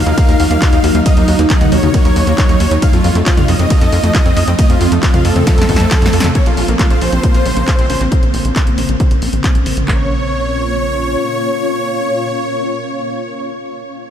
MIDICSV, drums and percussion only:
0, 0, Header, 1, 2, 480
1, 0, Start_track
1, 0, Key_signature, -5, "minor"
1, 0, Tempo, 441176
1, 1151, Time_signature, 4, 2, 24, 8
1, 15343, End_track
2, 0, Start_track
2, 0, Title_t, "Drums"
2, 72, Note_on_c, 9, 42, 38
2, 181, Note_off_c, 9, 42, 0
2, 192, Note_on_c, 9, 36, 124
2, 192, Note_on_c, 9, 42, 65
2, 192, Note_on_c, 9, 51, 70
2, 301, Note_off_c, 9, 36, 0
2, 301, Note_off_c, 9, 42, 0
2, 301, Note_off_c, 9, 51, 0
2, 312, Note_on_c, 9, 42, 38
2, 421, Note_off_c, 9, 42, 0
2, 432, Note_on_c, 9, 46, 111
2, 540, Note_off_c, 9, 46, 0
2, 552, Note_on_c, 9, 42, 39
2, 661, Note_off_c, 9, 42, 0
2, 672, Note_on_c, 9, 36, 119
2, 672, Note_on_c, 9, 39, 114
2, 672, Note_on_c, 9, 42, 60
2, 672, Note_on_c, 9, 51, 68
2, 781, Note_off_c, 9, 36, 0
2, 781, Note_off_c, 9, 39, 0
2, 781, Note_off_c, 9, 42, 0
2, 781, Note_off_c, 9, 51, 0
2, 792, Note_on_c, 9, 42, 38
2, 901, Note_off_c, 9, 42, 0
2, 912, Note_on_c, 9, 46, 109
2, 1021, Note_off_c, 9, 46, 0
2, 1032, Note_on_c, 9, 42, 39
2, 1141, Note_off_c, 9, 42, 0
2, 1151, Note_on_c, 9, 42, 68
2, 1151, Note_on_c, 9, 51, 72
2, 1152, Note_on_c, 9, 36, 116
2, 1260, Note_off_c, 9, 42, 0
2, 1260, Note_off_c, 9, 51, 0
2, 1261, Note_off_c, 9, 36, 0
2, 1272, Note_on_c, 9, 42, 39
2, 1381, Note_off_c, 9, 42, 0
2, 1392, Note_on_c, 9, 46, 108
2, 1501, Note_off_c, 9, 46, 0
2, 1512, Note_on_c, 9, 42, 43
2, 1621, Note_off_c, 9, 42, 0
2, 1632, Note_on_c, 9, 36, 116
2, 1632, Note_on_c, 9, 39, 112
2, 1632, Note_on_c, 9, 42, 66
2, 1632, Note_on_c, 9, 51, 71
2, 1740, Note_off_c, 9, 39, 0
2, 1740, Note_off_c, 9, 42, 0
2, 1740, Note_off_c, 9, 51, 0
2, 1741, Note_off_c, 9, 36, 0
2, 1751, Note_on_c, 9, 42, 41
2, 1751, Note_on_c, 9, 47, 86
2, 1860, Note_off_c, 9, 42, 0
2, 1860, Note_off_c, 9, 47, 0
2, 1871, Note_on_c, 9, 46, 100
2, 1980, Note_off_c, 9, 46, 0
2, 1992, Note_on_c, 9, 42, 38
2, 1992, Note_on_c, 9, 47, 63
2, 2101, Note_off_c, 9, 42, 0
2, 2101, Note_off_c, 9, 47, 0
2, 2111, Note_on_c, 9, 42, 66
2, 2111, Note_on_c, 9, 51, 73
2, 2112, Note_on_c, 9, 36, 119
2, 2220, Note_off_c, 9, 42, 0
2, 2220, Note_off_c, 9, 51, 0
2, 2221, Note_off_c, 9, 36, 0
2, 2232, Note_on_c, 9, 42, 40
2, 2341, Note_off_c, 9, 42, 0
2, 2352, Note_on_c, 9, 46, 105
2, 2461, Note_off_c, 9, 46, 0
2, 2472, Note_on_c, 9, 42, 41
2, 2581, Note_off_c, 9, 42, 0
2, 2592, Note_on_c, 9, 36, 121
2, 2592, Note_on_c, 9, 39, 112
2, 2592, Note_on_c, 9, 42, 64
2, 2592, Note_on_c, 9, 51, 70
2, 2701, Note_off_c, 9, 36, 0
2, 2701, Note_off_c, 9, 39, 0
2, 2701, Note_off_c, 9, 42, 0
2, 2701, Note_off_c, 9, 51, 0
2, 2712, Note_on_c, 9, 42, 40
2, 2821, Note_off_c, 9, 42, 0
2, 2831, Note_on_c, 9, 46, 106
2, 2940, Note_off_c, 9, 46, 0
2, 2952, Note_on_c, 9, 42, 42
2, 3061, Note_off_c, 9, 42, 0
2, 3071, Note_on_c, 9, 42, 71
2, 3071, Note_on_c, 9, 51, 74
2, 3072, Note_on_c, 9, 36, 116
2, 3180, Note_off_c, 9, 42, 0
2, 3180, Note_off_c, 9, 51, 0
2, 3181, Note_off_c, 9, 36, 0
2, 3191, Note_on_c, 9, 42, 42
2, 3300, Note_off_c, 9, 42, 0
2, 3311, Note_on_c, 9, 46, 102
2, 3419, Note_off_c, 9, 46, 0
2, 3431, Note_on_c, 9, 42, 43
2, 3540, Note_off_c, 9, 42, 0
2, 3551, Note_on_c, 9, 39, 121
2, 3551, Note_on_c, 9, 42, 69
2, 3551, Note_on_c, 9, 51, 71
2, 3552, Note_on_c, 9, 36, 112
2, 3660, Note_off_c, 9, 36, 0
2, 3660, Note_off_c, 9, 39, 0
2, 3660, Note_off_c, 9, 42, 0
2, 3660, Note_off_c, 9, 51, 0
2, 3671, Note_on_c, 9, 42, 42
2, 3671, Note_on_c, 9, 47, 85
2, 3780, Note_off_c, 9, 42, 0
2, 3780, Note_off_c, 9, 47, 0
2, 3790, Note_on_c, 9, 46, 98
2, 3899, Note_off_c, 9, 46, 0
2, 3910, Note_on_c, 9, 42, 39
2, 4019, Note_off_c, 9, 42, 0
2, 4030, Note_on_c, 9, 42, 70
2, 4030, Note_on_c, 9, 51, 74
2, 4031, Note_on_c, 9, 36, 110
2, 4139, Note_off_c, 9, 42, 0
2, 4139, Note_off_c, 9, 51, 0
2, 4140, Note_off_c, 9, 36, 0
2, 4150, Note_on_c, 9, 42, 42
2, 4259, Note_off_c, 9, 42, 0
2, 4270, Note_on_c, 9, 46, 105
2, 4379, Note_off_c, 9, 46, 0
2, 4391, Note_on_c, 9, 42, 42
2, 4500, Note_off_c, 9, 42, 0
2, 4511, Note_on_c, 9, 39, 117
2, 4511, Note_on_c, 9, 42, 68
2, 4511, Note_on_c, 9, 51, 72
2, 4512, Note_on_c, 9, 36, 120
2, 4620, Note_off_c, 9, 36, 0
2, 4620, Note_off_c, 9, 39, 0
2, 4620, Note_off_c, 9, 42, 0
2, 4620, Note_off_c, 9, 51, 0
2, 4631, Note_on_c, 9, 42, 41
2, 4740, Note_off_c, 9, 42, 0
2, 4751, Note_on_c, 9, 46, 106
2, 4860, Note_off_c, 9, 46, 0
2, 4871, Note_on_c, 9, 42, 43
2, 4979, Note_off_c, 9, 42, 0
2, 4990, Note_on_c, 9, 42, 75
2, 4990, Note_on_c, 9, 51, 73
2, 4991, Note_on_c, 9, 36, 117
2, 5099, Note_off_c, 9, 42, 0
2, 5099, Note_off_c, 9, 51, 0
2, 5100, Note_off_c, 9, 36, 0
2, 5111, Note_on_c, 9, 42, 42
2, 5220, Note_off_c, 9, 42, 0
2, 5231, Note_on_c, 9, 46, 105
2, 5339, Note_off_c, 9, 46, 0
2, 5351, Note_on_c, 9, 42, 44
2, 5460, Note_off_c, 9, 42, 0
2, 5471, Note_on_c, 9, 36, 116
2, 5471, Note_on_c, 9, 39, 124
2, 5471, Note_on_c, 9, 42, 69
2, 5471, Note_on_c, 9, 51, 72
2, 5580, Note_off_c, 9, 36, 0
2, 5580, Note_off_c, 9, 39, 0
2, 5580, Note_off_c, 9, 42, 0
2, 5580, Note_off_c, 9, 51, 0
2, 5591, Note_on_c, 9, 42, 43
2, 5591, Note_on_c, 9, 47, 83
2, 5700, Note_off_c, 9, 42, 0
2, 5700, Note_off_c, 9, 47, 0
2, 5710, Note_on_c, 9, 46, 104
2, 5819, Note_off_c, 9, 46, 0
2, 5831, Note_on_c, 9, 42, 41
2, 5831, Note_on_c, 9, 47, 60
2, 5940, Note_off_c, 9, 42, 0
2, 5940, Note_off_c, 9, 47, 0
2, 5951, Note_on_c, 9, 36, 116
2, 5951, Note_on_c, 9, 38, 71
2, 5951, Note_on_c, 9, 42, 72
2, 5951, Note_on_c, 9, 51, 72
2, 6059, Note_off_c, 9, 38, 0
2, 6059, Note_off_c, 9, 42, 0
2, 6059, Note_off_c, 9, 51, 0
2, 6060, Note_off_c, 9, 36, 0
2, 6070, Note_on_c, 9, 42, 43
2, 6110, Note_on_c, 9, 38, 77
2, 6178, Note_off_c, 9, 42, 0
2, 6190, Note_on_c, 9, 46, 103
2, 6192, Note_on_c, 9, 36, 60
2, 6219, Note_off_c, 9, 38, 0
2, 6270, Note_on_c, 9, 38, 87
2, 6299, Note_off_c, 9, 46, 0
2, 6301, Note_off_c, 9, 36, 0
2, 6310, Note_on_c, 9, 42, 44
2, 6379, Note_off_c, 9, 38, 0
2, 6419, Note_off_c, 9, 42, 0
2, 6430, Note_on_c, 9, 38, 86
2, 6430, Note_on_c, 9, 39, 120
2, 6430, Note_on_c, 9, 42, 71
2, 6430, Note_on_c, 9, 51, 70
2, 6432, Note_on_c, 9, 36, 118
2, 6539, Note_off_c, 9, 38, 0
2, 6539, Note_off_c, 9, 39, 0
2, 6539, Note_off_c, 9, 42, 0
2, 6539, Note_off_c, 9, 51, 0
2, 6541, Note_off_c, 9, 36, 0
2, 6550, Note_on_c, 9, 42, 42
2, 6590, Note_on_c, 9, 38, 96
2, 6659, Note_off_c, 9, 42, 0
2, 6670, Note_on_c, 9, 46, 103
2, 6699, Note_off_c, 9, 38, 0
2, 6751, Note_on_c, 9, 38, 107
2, 6779, Note_off_c, 9, 46, 0
2, 6791, Note_on_c, 9, 42, 44
2, 6791, Note_on_c, 9, 47, 63
2, 6859, Note_off_c, 9, 38, 0
2, 6900, Note_off_c, 9, 42, 0
2, 6900, Note_off_c, 9, 47, 0
2, 6911, Note_on_c, 9, 42, 71
2, 6913, Note_on_c, 9, 36, 113
2, 7019, Note_off_c, 9, 42, 0
2, 7021, Note_off_c, 9, 36, 0
2, 7031, Note_on_c, 9, 42, 41
2, 7140, Note_off_c, 9, 42, 0
2, 7151, Note_on_c, 9, 46, 107
2, 7260, Note_off_c, 9, 46, 0
2, 7272, Note_on_c, 9, 42, 42
2, 7380, Note_off_c, 9, 42, 0
2, 7391, Note_on_c, 9, 39, 121
2, 7391, Note_on_c, 9, 42, 68
2, 7393, Note_on_c, 9, 36, 120
2, 7500, Note_off_c, 9, 39, 0
2, 7500, Note_off_c, 9, 42, 0
2, 7501, Note_off_c, 9, 36, 0
2, 7512, Note_on_c, 9, 42, 41
2, 7621, Note_off_c, 9, 42, 0
2, 7632, Note_on_c, 9, 46, 98
2, 7741, Note_off_c, 9, 46, 0
2, 7752, Note_on_c, 9, 42, 39
2, 7861, Note_off_c, 9, 42, 0
2, 7871, Note_on_c, 9, 42, 67
2, 7873, Note_on_c, 9, 36, 117
2, 7980, Note_off_c, 9, 42, 0
2, 7981, Note_off_c, 9, 36, 0
2, 7991, Note_on_c, 9, 42, 40
2, 8100, Note_off_c, 9, 42, 0
2, 8111, Note_on_c, 9, 46, 103
2, 8220, Note_off_c, 9, 46, 0
2, 8232, Note_on_c, 9, 42, 41
2, 8340, Note_off_c, 9, 42, 0
2, 8352, Note_on_c, 9, 36, 113
2, 8352, Note_on_c, 9, 39, 113
2, 8352, Note_on_c, 9, 42, 64
2, 8461, Note_off_c, 9, 36, 0
2, 8461, Note_off_c, 9, 39, 0
2, 8461, Note_off_c, 9, 42, 0
2, 8472, Note_on_c, 9, 42, 39
2, 8581, Note_off_c, 9, 42, 0
2, 8592, Note_on_c, 9, 46, 102
2, 8701, Note_off_c, 9, 46, 0
2, 8712, Note_on_c, 9, 42, 41
2, 8821, Note_off_c, 9, 42, 0
2, 8832, Note_on_c, 9, 42, 66
2, 8833, Note_on_c, 9, 36, 117
2, 8941, Note_off_c, 9, 42, 0
2, 8942, Note_off_c, 9, 36, 0
2, 8952, Note_on_c, 9, 42, 40
2, 9061, Note_off_c, 9, 42, 0
2, 9072, Note_on_c, 9, 46, 106
2, 9181, Note_off_c, 9, 46, 0
2, 9193, Note_on_c, 9, 42, 40
2, 9301, Note_off_c, 9, 42, 0
2, 9313, Note_on_c, 9, 36, 117
2, 9313, Note_on_c, 9, 39, 120
2, 9313, Note_on_c, 9, 42, 64
2, 9421, Note_off_c, 9, 39, 0
2, 9421, Note_off_c, 9, 42, 0
2, 9422, Note_off_c, 9, 36, 0
2, 9432, Note_on_c, 9, 42, 40
2, 9541, Note_off_c, 9, 42, 0
2, 9551, Note_on_c, 9, 46, 104
2, 9660, Note_off_c, 9, 46, 0
2, 9671, Note_on_c, 9, 42, 38
2, 9780, Note_off_c, 9, 42, 0
2, 9792, Note_on_c, 9, 36, 121
2, 9792, Note_on_c, 9, 42, 62
2, 9901, Note_off_c, 9, 36, 0
2, 9901, Note_off_c, 9, 42, 0
2, 9912, Note_on_c, 9, 42, 38
2, 10020, Note_off_c, 9, 42, 0
2, 10031, Note_on_c, 9, 46, 108
2, 10140, Note_off_c, 9, 46, 0
2, 10151, Note_on_c, 9, 42, 40
2, 10260, Note_off_c, 9, 42, 0
2, 10272, Note_on_c, 9, 36, 120
2, 10272, Note_on_c, 9, 39, 114
2, 10272, Note_on_c, 9, 42, 62
2, 10381, Note_off_c, 9, 36, 0
2, 10381, Note_off_c, 9, 39, 0
2, 10381, Note_off_c, 9, 42, 0
2, 10391, Note_on_c, 9, 42, 37
2, 10500, Note_off_c, 9, 42, 0
2, 10511, Note_on_c, 9, 46, 106
2, 10620, Note_off_c, 9, 46, 0
2, 10631, Note_on_c, 9, 42, 38
2, 10739, Note_off_c, 9, 42, 0
2, 10752, Note_on_c, 9, 36, 94
2, 10752, Note_on_c, 9, 39, 86
2, 10861, Note_off_c, 9, 36, 0
2, 10861, Note_off_c, 9, 39, 0
2, 15343, End_track
0, 0, End_of_file